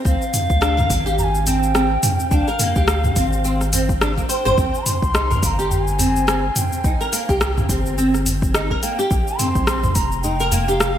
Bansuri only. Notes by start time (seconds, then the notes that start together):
0.07 F5
1.18 A#5
1.23 G#5
1.47 G5
2.31 F5 G5
4.29 G5
4.86 C6
5.42 A#5 C6
5.70 G5
5.83 G#5
6.56 G5
8.82 G5
9.38 C6
9.95 A#5
10.22 G5
10.68 F5 G5